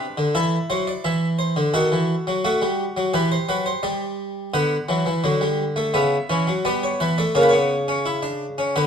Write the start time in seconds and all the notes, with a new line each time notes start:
Already playing: D4 B4
0.18 D3
0.35 E3 E4 A4
0.70 F#3 C5
0.87 D5
1.04 E3 E5
1.39 C5
1.56 D3
1.74 D#3 F#4 A4
1.92 E3
2.27 F#3
2.45 A3 F#4
2.62 G3
2.97 F#3
3.14 E3 G4 B4
3.32 C5
3.49 F#3 B4
3.66 C5
3.83 G3 D5
4.54 D3 B3 F#5
4.89 E3 F#3
5.06 E3
5.24 D3 F#3
5.41 G3
5.76 A3
5.94 C#3 B3 E5
6.30 E3 C#4
6.47 F#3
6.65 G3 B3 D5
6.83 C#5
7.00 E3 B4
7.18 A3 D5
7.35 C#3 A#3 C#5
7.42 B4
7.49 B3 C#5
7.88 C#4
8.06 E4
8.23 D4
8.58 C#4
8.76 D3 B3 B4